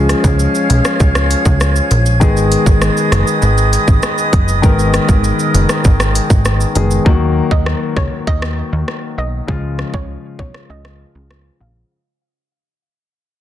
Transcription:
Already playing: analog synth bass C#2, grand piano F3 G#3 C#4 G#4, flute section C#5 F5 G#5 F6 G#6
0.09 cross-stick, closed hi-hat, shaker
0.24 analog synth bass C#2, kick, shaker
0.39 shaker
0.55 shaker
0.70 analog synth bass B1, closed hi-hat, shaker
0.85 cross-stick, shaker
1.00 analog synth bass C#2, kick, shaker
1.15 cross-stick, shaker
1.31 closed hi-hat, shaker
1.45 analog synth bass C#2, kick, shaker
1.60 cross-stick, shaker
1.76 shaker
1.91 analog synth bass A#1, closed hi-hat, shaker
2.06 shaker
2.20 analog synth bass G#1, grand piano D#3 G#3 B3 G#4, flute section B4 D#5 D#6, kick, shaker
2.37 shaker
2.52 closed hi-hat, shaker
2.66 analog synth bass G#1, kick, shaker
2.82 cross-stick, shaker
2.97 shaker
3.12 analog synth bass F#1, cross-stick, closed hi-hat, shaker
3.27 shaker
3.42 analog synth bass G#1, shaker
3.58 shaker
3.73 closed hi-hat, shaker
3.88 analog synth bass G#1, kick, shaker
4.03 cross-stick, shaker
4.18 shaker
4.33 analog synth bass F#1, kick, closed hi-hat, shaker
4.48 shaker
4.62 analog synth bass G#1, grand piano D#3 G#3 B3 A#4, kick, shaker
4.79 shaker
4.94 cross-stick, closed hi-hat, shaker
5.09 analog synth bass G#1, kick, shaker
5.24 shaker
5.39 shaker
5.54 analog synth bass F#1, closed hi-hat, shaker
5.69 cross-stick, shaker
5.84 analog synth bass G#1, kick, shaker
6.00 cross-stick, shaker
6.15 closed hi-hat, shaker
6.30 analog synth bass G#1, kick, shaker
6.45 cross-stick, shaker
6.61 shaker
6.75 analog synth bass F#1, grand piano D#3 G#3 B3 G#4, closed hi-hat, shaker
6.91 shaker
7.05 analog synth bass D#2, grand piano D#3 F#3 A#3 F#4, kick
7.51 analog synth bass D#2, synth pluck D#5, kick
7.66 cross-stick
7.96 analog synth bass C#2, synth pluck C#5, kick, cross-stick
8.27 analog synth bass D#2, synth pluck D#5, kick
8.42 cross-stick
8.73 analog synth bass D#2
8.88 cross-stick
9.18 analog synth bass B1, synth pluck D#5
9.47 analog synth bass C#2, grand piano C#3 F3 G#3 F4, kick
9.79 cross-stick
9.94 analog synth bass C#2, synth pluck C#5, kick
10.39 analog synth bass B1, synth pluck C#5, kick
10.54 cross-stick
10.70 analog synth bass C#2, synth pluck D#5
10.85 cross-stick
11.15 analog synth bass C#2
11.31 cross-stick
11.60 analog synth bass A#1, synth pluck F5

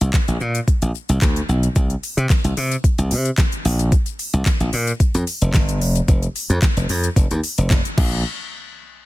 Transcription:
0.01 slap bass C2, closed hi-hat, shaker
0.14 kick, snare, clap, closed hi-hat, shaker
0.28 slap bass A#1, closed hi-hat, shaker
0.40 slap bass A#2, shaker
0.55 closed hi-hat, shaker
0.68 kick, closed hi-hat, shaker
0.82 slap bass A#1, closed hi-hat, shaker
0.95 shaker
1.09 slap bass C2, closed hi-hat, shaker
1.22 slap bass D2, kick, snare, clap, closed hi-hat, shaker
1.36 closed hi-hat, shaker
1.49 slap bass B1, shaker
1.63 closed hi-hat, shaker
1.76 slap bass C2, kick, closed hi-hat, shaker
1.90 closed hi-hat, shaker
2.03 open hi-hat, shaker
2.17 slap bass C3, closed hi-hat, shaker
2.30 kick, snare, clap, closed hi-hat, shaker
2.44 slap bass C2, closed hi-hat, shaker
2.57 slap bass C3, open hi-hat, shaker
2.72 closed hi-hat, shaker
2.84 kick, closed hi-hat, shaker
2.98 slap bass C2, closed hi-hat, shaker
3.11 slap bass C3, open hi-hat, shaker
3.25 closed hi-hat, shaker
3.38 kick, snare, clap, closed hi-hat, shaker
3.52 closed hi-hat, shaker
3.65 slap bass A#1, open hi-hat, shaker
3.79 closed hi-hat, shaker
3.92 kick, closed hi-hat, shaker
4.06 closed hi-hat, shaker
4.19 open hi-hat, shaker
4.33 slap bass C2, closed hi-hat, shaker
4.46 kick, snare, clap, closed hi-hat, shaker
4.60 slap bass A#1, closed hi-hat, shaker
4.73 slap bass A#2, open hi-hat, shaker
4.87 closed hi-hat, shaker
5.00 kick, closed hi-hat, shaker
5.14 slap bass F2, closed hi-hat, shaker
5.27 open hi-hat, shaker
5.42 slap bass F1, closed hi-hat, shaker
5.54 slap bass G1, kick, snare, clap, closed hi-hat, shaker
5.69 closed hi-hat, shaker
5.81 slap bass F1, open hi-hat, shaker
5.96 closed hi-hat, shaker
6.08 slap bass F1, kick, closed hi-hat, shaker
6.23 closed hi-hat, shaker
6.36 open hi-hat, shaker
6.50 slap bass F2, closed hi-hat, shaker
6.62 kick, snare, clap, closed hi-hat, shaker
6.77 slap bass F1, closed hi-hat, shaker
6.89 slap bass F2, open hi-hat, shaker
7.04 closed hi-hat, shaker
7.16 slap bass F1, kick, closed hi-hat, shaker
7.31 slap bass D#2, closed hi-hat, shaker
7.44 open hi-hat, shaker
7.58 slap bass F1, closed hi-hat, shaker
7.70 slap bass F1, kick, snare, clap, closed hi-hat, shaker
7.85 closed hi-hat, shaker
7.98 slap bass A#1, kick, crash

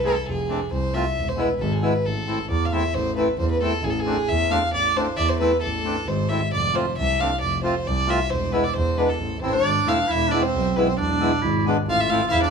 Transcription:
0.00 accordion A3, violin B4
0.05 accordion C4 G#4, violin A4
0.27 double bass F1, violin G#4
0.48 accordion A3 C4 D4
0.70 double bass C2, violin C5
0.94 accordion A3 C4 F4, violin E5
1.16 double bass E1
1.28 violin C5
1.36 accordion G#3 B3 E4, violin B4
1.57 double bass G#1, violin B4
1.61 violin A4
1.72 violin G#4
1.81 accordion G#3 B3 E4, violin B4
2.04 double bass A1, violin A4
2.26 accordion A3 C4 E4
2.48 double bass E2, violin D5
2.65 violin F5
2.72 accordion A3 C4 E4, violin E5
2.93 double bass A1, violin C5
3.16 accordion A3 C4 E4, violin B4
3.37 double bass E2, violin C5
3.51 violin B4
3.61 accordion A3 C4 E4, violin A4
3.82 double bass A1, violin G#4
3.90 violin A4
4.00 violin G#4
4.05 accordion A3 C4 D4
4.28 double bass E2, violin E5
4.50 accordion A3 C4 D4, violin F5
4.73 double bass A1, violin D5
4.95 accordion A3 C4 D4, violin C5
5.16 double bass E2, violin D5 E5
5.29 violin C5
5.40 accordion A3 C4 E4, violin B4
5.62 double bass A1, violin A4
5.84 accordion A3 C4 D4
6.06 double bass G#1, violin C5
6.29 accordion A3 C4 E4, violin E5
6.52 double bass F1, violin D5
6.73 accordion A3 C4 F4, violin C5
6.97 double bass C2, violin E5
7.19 accordion A3 C4 D4, violin F5
7.41 double bass F1, violin D5
7.63 accordion A3 C4 F4, violin C5
7.86 double bass C2, violin D5
8.06 accordion A3 C4 F4, violin E5
8.30 double bass E1, violin C5
8.52 accordion G#3 B3 E4, violin B4
8.64 violin D5
8.74 double bass E2, violin C5
8.97 accordion G#3 B3 D4, violin B4
9.09 violin A4
9.19 double bass A1
9.41 double bass A1, accordion A3 C4 E4, clarinet C4, violin C5
9.52 clarinet D4, violin D5
9.63 double bass G#1
9.86 double bass E1, accordion A3 C4 E4, violin F5
10.08 double bass E1, clarinet E4, violin E5
10.28 accordion G#3 B3, clarinet D4, violin D5
10.33 accordion E4
10.39 clarinet C4, violin C5
10.54 double bass B1
10.76 accordion G#3 B3 E4, violin B4
10.83 clarinet C4
10.89 violin C5
10.97 double bass E1, clarinet D4, violin D5
11.20 accordion G#3 B3 E4
11.42 double bass G#1, clarinet E4
11.65 accordion G#3 B3 D4
11.86 double bass A1, clarinet F4, violin F5
12.00 violin E5
12.10 accordion A3 C4 E4, violin F5
12.29 double bass E2, clarinet E4, violin E5 F5
12.42 clarinet D4, violin D5

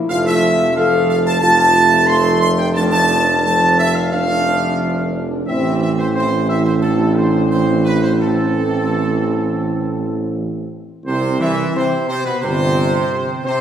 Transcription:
0.07 tuba F1, trombone section F3 A3, french horn section F4, trumpet section F5
0.26 trumpet section E5
0.73 trombone section F3 A3, french horn section A4, trumpet section F5
1.09 trumpet section F5
1.26 trumpet section A5
1.41 trombone section F3 A3, french horn section F4, trumpet section A5
1.58 trumpet section A5
2.07 trombone section F3 A3, trumpet section C6
2.40 trumpet section C6
2.58 trumpet section G5
2.74 trombone section F3 A3, french horn section D4, trumpet section A5
2.91 trumpet section A5
3.44 trombone section F3 A3, french horn section C4, trumpet section A5
3.77 trumpet section E5
3.95 trumpet section F5
4.12 trombone section F3 A3, french horn section D4, trumpet section F5
5.47 tuba A1, trombone section E3 C4, french horn section C4, trumpet section E5
5.81 trumpet section E5
5.98 trumpet section C5
6.14 trombone section E3 C4, french horn section E4, trumpet section C5
6.48 trumpet section E5
6.64 trumpet section C5
6.81 trombone section E3 C4, french horn section D4, trumpet section A4
7.16 trumpet section C5
7.50 trombone section E3 C4, trumpet section C5
7.84 trumpet section B4
8.03 trumpet section C5
8.20 trombone section E3 C4, french horn section C4, trumpet section A4
11.05 tuba C2, trombone section C3, french horn section C4, trumpet section C5
11.40 trombone section E3, french horn section E4, trumpet section E5
11.74 trombone section C3, french horn section C4, trumpet section C5
12.07 trombone section C3, french horn section C4, trumpet section C5
12.24 trombone section B2, french horn section B3, trumpet section B4
12.41 tuba G1, trombone section C3, french horn section C4, trumpet section C5
13.45 trombone section C3, french horn section C4, trumpet section C5

